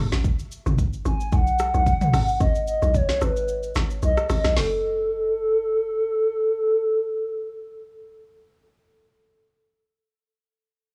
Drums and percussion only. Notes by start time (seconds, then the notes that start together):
0.12 snare, shaker
0.24 kick, shaker
0.39 shaker
0.52 shaker
0.66 mid tom, shaker
0.78 kick, shaker
0.93 shaker
1.05 shaker
1.20 shaker
1.32 kick, shaker
1.47 shaker
1.59 cross-stick, shaker
1.74 shaker
1.86 kick, shaker
2.01 mid tom, shaker
2.14 cross-stick, open hi-hat, shaker
2.28 shaker
2.40 kick, shaker
2.55 shaker
2.68 shaker
2.82 shaker
2.94 kick, shaker
3.09 snare, shaker
3.21 cross-stick, shaker
3.37 shaker
3.48 shaker
3.63 shaker
3.75 cross-stick, snare, shaker
3.90 shaker
4.03 shaker
4.17 cross-stick, shaker
4.30 cross-stick, open hi-hat, shaker
4.44 cross-stick, snare, shaker
4.57 snare, open hi-hat